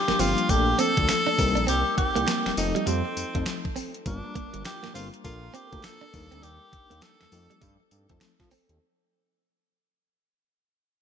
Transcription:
Already playing: F3 G3 A#3 D4 G4
0.08 G1 A#3, snare
0.19 G1 F3 G3 A#3 C4 D4 F4 G4, open hi-hat, tambourine
0.38 closed hi-hat
0.49 A#1 F3 A3 A#3 D4 G4 A4, kick, closed hi-hat, tambourine
0.79 C4 A4, closed hi-hat, tambourine
0.97 D2 F3 A3 A#3 D4 A4, kick, closed hi-hat
1.09 snare, clap, closed hi-hat, tambourine
1.27 D4
1.38 C2 G3 A#3 C4 D#4 A#4, muted clean electric guitar stroke, kick, open hi-hat, tambourine
1.55 A#1 D4, closed hi-hat
1.67 C2 C4 G4, closed hi-hat, tambourine
1.97 G4, muted clean electric guitar stroke, kick, closed hi-hat
2.16 C2 A#3, closed hi-hat
2.27 A#3, snare, clap, closed hi-hat, tambourine
2.45 F1, muted clean electric guitar stroke, snare
2.57 F1 F3 A3 C4 D#4 A4, open hi-hat, tambourine
2.75 G3, closed hi-hat
2.86 F2 G3 C4, closed hi-hat, tambourine
3.05 muted clean electric guitar stroke
3.17 F2, closed hi-hat, tambourine
3.35 F2 F3 A3 C4 D#4 A4, kick, closed hi-hat
3.46 snare, clap, closed hi-hat, tambourine
3.65 kick
3.76 C4, open hi-hat, tambourine
3.94 closed hi-hat
4.06 G1 G3 A#3 D4 F4 A#4, kick, closed hi-hat, tambourine
4.24 muted clean electric guitar stroke
4.35 A#3, kick, closed hi-hat
4.53 G1 G3, closed hi-hat
4.64 G4, muted clean electric guitar stroke, snare, clap, closed hi-hat, tambourine
4.83 G1 A#3, snare
4.94 G1 G3 A#3 C4 D4 F4 A#4, open hi-hat, tambourine
5.14 closed hi-hat
5.24 A#1 A#3 D4 F4 A4 A#4, kick, closed hi-hat, tambourine
5.54 C4 G4, closed hi-hat, tambourine
5.72 D2 A#3 D4 F4 A4 A#4, kick, closed hi-hat
5.83 A4, snare, clap, closed hi-hat, tambourine
6.01 D4
6.13 D#2 F#3 A#3 D4 D#4 A#4, muted clean electric guitar stroke, kick, open hi-hat, tambourine
6.20 G3
6.31 D2 C4, closed hi-hat
6.42 D#2 G3 G4, closed hi-hat, tambourine
6.72 muted clean electric guitar stroke, kick, closed hi-hat
6.90 D#2 A#3, closed hi-hat
7.02 A#3 A4, snare, clap, closed hi-hat, tambourine
7.20 F2, muted clean electric guitar stroke, snare
7.32 F2 F3 A3 C4 D#4 A4, open hi-hat, tambourine
7.50 G3, closed hi-hat
7.62 G2 G3, kick, closed hi-hat, tambourine
7.80 muted clean electric guitar stroke
7.91 G2, closed hi-hat, tambourine
8.09 F2 F3 A3 C4 D#4 A4, kick, closed hi-hat
8.21 snare, clap, closed hi-hat, tambourine
8.40 F3, kick, snare
8.51 C4, open hi-hat, tambourine
8.69 D#2, closed hi-hat

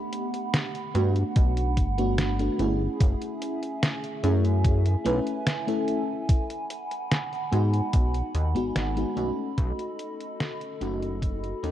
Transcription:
Already playing: A3 B3 D4 G4 F#5 B5
0.13 closed hi-hat
0.34 closed hi-hat
0.54 snare, closed hi-hat
0.75 closed hi-hat
0.94 G2 A3 B3 D4 F#4, closed hi-hat
1.16 closed hi-hat
1.36 B1, kick, closed hi-hat
1.57 closed hi-hat
1.77 G1, kick, closed hi-hat
1.98 A3 B3 D4 F#4, closed hi-hat
2.18 snare, closed hi-hat
2.39 A3 B3 D4 F#4, closed hi-hat
2.58 G1 A3 C#4 E4 G#4, closed hi-hat
3.00 F#1 E5 G#5, kick, closed hi-hat
3.22 closed hi-hat
3.42 closed hi-hat
3.63 closed hi-hat
3.83 snare, closed hi-hat
4.04 closed hi-hat
4.23 F#2 A3 C#4 E4 G#4, closed hi-hat
4.45 closed hi-hat
4.65 kick, closed hi-hat
4.86 closed hi-hat
5.05 B1 A3 C#4 E4 B4, closed hi-hat
5.27 closed hi-hat
5.47 snare, closed hi-hat
5.67 A3 C#4 E4 A4, closed hi-hat
5.88 closed hi-hat
6.29 F#5 B5, kick, closed hi-hat
6.50 closed hi-hat
6.70 closed hi-hat
6.91 closed hi-hat
7.11 snare, closed hi-hat
7.33 closed hi-hat
7.51 G#2 G#3 B3 D#4 F#4, closed hi-hat
7.74 closed hi-hat
7.93 B1, kick, closed hi-hat
8.14 closed hi-hat
8.35 D#2, closed hi-hat
8.55 G#1 G#3 B3 D#4 F#4, closed hi-hat
8.76 G#1, snare, closed hi-hat
8.96 G#3 B3 D#4 F#4, closed hi-hat
9.15 B1 A3 C#4 D#4 F#4 A4 D#5, closed hi-hat
9.58 B1, kick, closed hi-hat
9.79 closed hi-hat
9.99 closed hi-hat
10.20 closed hi-hat
10.40 snare, closed hi-hat
10.61 closed hi-hat
10.80 F#1 A3 C#4 D#4 F#4, closed hi-hat
11.02 closed hi-hat
11.22 kick, closed hi-hat
11.44 closed hi-hat
11.63 D#2 A3 C#4 D#4 A4, closed hi-hat

